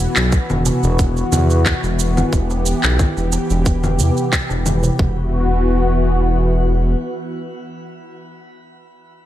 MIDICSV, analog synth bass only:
0, 0, Header, 1, 2, 480
1, 0, Start_track
1, 0, Key_signature, 1, "minor"
1, 0, Tempo, 666667
1, 1674, Time_signature, 4, 2, 24, 8
1, 6666, End_track
2, 0, Start_track
2, 0, Title_t, "Analog synth bass"
2, 0, Program_c, 0, 38
2, 118, Note_on_c, 0, 35, 89
2, 270, Note_off_c, 0, 35, 0
2, 358, Note_on_c, 0, 28, 84
2, 510, Note_off_c, 0, 28, 0
2, 598, Note_on_c, 0, 28, 105
2, 889, Note_off_c, 0, 28, 0
2, 950, Note_on_c, 0, 40, 87
2, 1248, Note_off_c, 0, 40, 0
2, 1319, Note_on_c, 0, 28, 77
2, 1609, Note_off_c, 0, 28, 0
2, 1675, Note_on_c, 0, 28, 97
2, 1970, Note_off_c, 0, 28, 0
2, 2042, Note_on_c, 0, 35, 89
2, 2193, Note_off_c, 0, 35, 0
2, 2282, Note_on_c, 0, 28, 78
2, 2432, Note_off_c, 0, 28, 0
2, 2522, Note_on_c, 0, 28, 107
2, 2873, Note_on_c, 0, 40, 84
2, 2884, Note_off_c, 0, 28, 0
2, 2956, Note_off_c, 0, 40, 0
2, 3240, Note_on_c, 0, 28, 81
2, 3530, Note_off_c, 0, 28, 0
2, 3594, Note_on_c, 0, 28, 91
2, 5005, Note_off_c, 0, 28, 0
2, 6666, End_track
0, 0, End_of_file